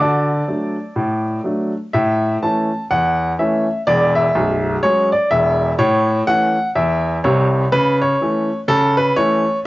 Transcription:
0.00 D3 F#4 D5 A5 D6
0.48 F#3 A3 D4
0.96 A2
1.44 F#3 A3 D4
1.93 A2 E5
2.42 E3 A3 C#4 A5
2.91 E2 F#5
3.39 E3 A3 C#4 E5
3.87 E1 E2 D5
4.15 E5
4.35 B0 B1
4.83 F#3 G#3 C#4 C#5
5.12 D5
5.31 E1 E2 E5
5.79 A2 C#5
6.27 E3 A3 C#4 F#5
6.75 E2 E5
7.24 C2 C3 C#5
7.72 C#3 B4
8.02 C#5
8.21 E3 A3 C#4
8.68 C#3 A4
8.97 B4
9.16 E3 A3 C#4 C#5

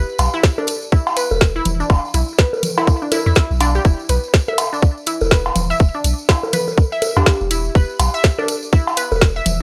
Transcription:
0.09 tambourine
0.18 B1, closed hi-hat, tambourine, cowbell
0.33 E4, tambourine
0.43 kick, snare, tambourine
0.58 D4, tambourine, low bongo
0.67 closed hi-hat, tambourine
0.82 tambourine
0.92 E4, kick, tambourine
1.07 tambourine, cowbell
1.17 B4, closed hi-hat, tambourine
1.31 E1, tambourine, low bongo
1.41 kick, snare, tambourine
1.56 E4, tambourine
1.65 E1, closed hi-hat, tambourine, low conga
1.80 D4, tambourine
1.90 E1, kick, tambourine, cowbell
2.05 tambourine
2.14 B1 E4, closed hi-hat, tambourine
2.28 tambourine
2.38 B4, kick, snare, tambourine
2.53 tambourine, low bongo
2.63 closed hi-hat, tambourine, low conga
2.77 E4, tambourine, cowbell, low bongo
2.87 kick, tambourine
3.02 D4, tambourine
3.12 E4, closed hi-hat, tambourine, low bongo
3.26 E2 E4, tambourine
3.35 E4, kick, snare, tambourine
3.51 B1, tambourine
3.60 D4, closed hi-hat, tambourine, cowbell
3.75 G4, tambourine
3.85 E1 E4, kick, tambourine
3.99 tambourine
4.09 B1 B4, closed hi-hat, tambourine
4.24 tambourine
4.34 kick, snare, tambourine
4.48 E5, tambourine, low bongo
4.58 closed hi-hat, tambourine, cowbell
4.73 D4, tambourine
4.82 kick, tambourine
4.98 tambourine
5.06 E4, closed hi-hat, tambourine
5.21 E1, tambourine, low bongo
5.31 B4, kick, snare, tambourine
5.46 tambourine, cowbell
5.56 E1, closed hi-hat, tambourine, low conga
5.70 E5, tambourine
5.80 E1, kick, tambourine
5.94 D4, tambourine
6.04 B1, closed hi-hat, tambourine
6.18 tambourine
6.29 E4, kick, snare, tambourine, cowbell
6.43 tambourine, low bongo
6.53 B4, closed hi-hat, tambourine, low conga
6.68 tambourine, low bongo
6.78 kick, tambourine
6.92 E5, tambourine
7.02 closed hi-hat, tambourine, low bongo
7.16 E2 D4 G4, tambourine, cowbell
7.26 G4, kick, snare, tambourine
7.41 E1, tambourine
7.51 E4, closed hi-hat, tambourine
7.64 tambourine
7.75 E1 B4, kick, tambourine
7.89 tambourine
8.00 B1, closed hi-hat, tambourine, cowbell
8.14 E5, tambourine
8.23 kick, snare, tambourine
8.38 D4, tambourine, low bongo
8.48 closed hi-hat, tambourine
8.63 tambourine
8.72 E4, kick, tambourine
8.87 tambourine, cowbell
8.97 B4, closed hi-hat, tambourine
9.12 E1, tambourine, low bongo
9.21 kick, snare, tambourine
9.36 E5, tambourine
9.46 E1, closed hi-hat, tambourine, low conga

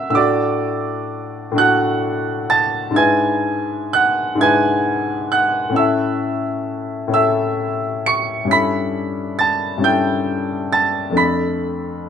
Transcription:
Already playing: C#4 E4 A4 E5 F#5 E6 F#6
0.10 A2 D4 F#4 E6
0.15 A4 D5 D6
1.52 A2 D4
1.56 F#4 A4 F#5 F#6
2.50 A5 A6
2.91 G#2 D4 E4
2.96 B4 G#5 G#6
3.93 F#5 F#6
4.35 G#2 D4 E4
4.41 B4 G#5 G#6
5.32 F#5 F#6
5.69 A2 C#4
5.74 E4 A4 E5 E6
7.08 A2 C#4 E4
7.13 A4 E5 E6
8.06 C#6 C#7
8.45 G2 C#4
8.49 E4 A4 B5 B6
9.39 A5 A6
9.78 G2 C#4
9.82 E4 A4 G5 G6
10.73 A5 A6
11.10 F2 A3 D4
11.16 A4 B5 B6

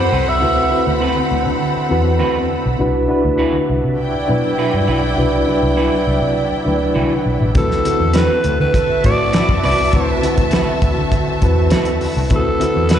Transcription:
Already playing: F#2 D3 F#3 C4 E4 F#4 A4 B4 C5 F#5 B5
0.11 C2 C4 F#4 B4
0.29 E5
0.41 D2 C4 E4 F#4 B4
0.71 C4 E4 F#4 B4
0.87 D2
1.00 C4 F#4 B4
1.31 D2
1.46 D3
1.76 muted fingered electric bass stroke
1.89 E2 C4 E4 F#4 B4
2.19 D2 C4 F#4 B4
2.66 B1
2.79 C2 C3 B3 D4 E4 F#4 B4
3.08 D4 E4 F#4 B4
3.25 D2
3.38 E4 F#4 B4
3.70 C2
3.84 C3
3.98 E4 D5 G5
4.15 muted fingered electric bass stroke
4.28 B2 F#3 D4 E4 B4
4.58 E4 F#4 B4
4.74 G2
4.87 B1 E4 F#4 B4
5.17 C2 D4 E4 F#4 B4
5.47 F#3 D4 E4 B4
5.63 C2
5.76 E4 F#4 B4
6.07 C2
6.22 C3
6.52 muted fingered electric bass stroke
6.65 D2 F#3 D4 E4 B4
6.94 C2 E4 F#4 B4
7.26 B1
7.41 A1
7.55 D2 D3 C4 E4 F#4 A4 B4, kick, closed hi-hat
7.71 snare
7.85 C4 E4 F#4 A4, closed hi-hat
8.00 E2
8.13 C4 F#4 B4, snare, closed hi-hat
8.18 B4
8.44 D2, closed hi-hat
8.60 D3 B4
8.74 F#4 E5 A5, kick, closed hi-hat
8.89 muted fingered electric bass stroke
9.03 A2 C4 E4 F#4 B4 D5, kick, closed hi-hat
9.33 C4 F#4 B4, snare, closed hi-hat
9.49 F#2, kick
9.62 C2 C4 F#4 B4 D5, open hi-hat
9.93 D2 C4 E4 F#4 B4, kick, closed hi-hat
10.23 C4 E4 F#4 B4, closed hi-hat
10.38 D2, kick, closed hi-hat
10.51 C4 F#4 B4, snare, closed hi-hat
10.82 D2, kick, closed hi-hat
10.98 D3
11.12 kick, closed hi-hat
11.28 muted fingered electric bass stroke
11.41 E2 C4 E4 F#4 B4, kick, closed hi-hat
11.70 D2 C4 F#4 B4, snare, closed hi-hat
11.85 closed hi-hat
12.01 open hi-hat
12.17 C2
12.30 D2 C4 E4 F#4 B4, kick, closed hi-hat
12.36 A4
12.60 C4 E4 F#4 B4, closed hi-hat
12.76 E2
12.89 C4 F#4 B4, snare, closed hi-hat
12.94 B4

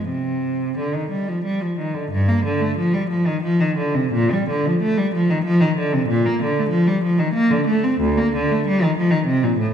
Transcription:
Already playing: G#3
0.09 C3
0.78 D3
0.94 D#3
1.10 G3
1.28 F3
1.44 G3
1.61 F3
1.79 D#3
1.94 D3
2.11 G2
2.29 A#3
2.45 D3
2.61 A3
2.77 F3
2.94 G3
3.10 F3
3.26 D#3
3.43 F3
3.60 D#3
3.77 D3
3.94 C3
4.13 A#2
4.33 G3
4.49 D3
4.66 F3
4.82 A3
4.98 G3
5.15 F3
5.30 D#3
5.45 F3
5.61 D#3
5.77 D3
5.93 C3
6.08 A#2
6.26 A#3
6.42 D3
6.59 A3
6.69 F3
6.87 G3
7.04 F3
7.18 D#3
7.34 A#3
7.51 D3
7.67 A3
7.84 C4
8.01 D2
8.18 A#3
8.35 D3
8.51 A3
8.67 G3
8.83 D#3
8.98 F3
9.11 D#3
9.26 C3
9.44 A#2
9.59 A2

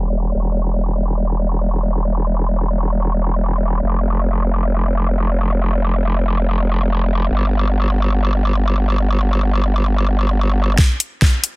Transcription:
Already playing: E1
0.35 E1
3.83 F1
7.30 G1
10.78 kick, snare
11.00 closed hi-hat
11.22 kick, snare
11.44 closed hi-hat

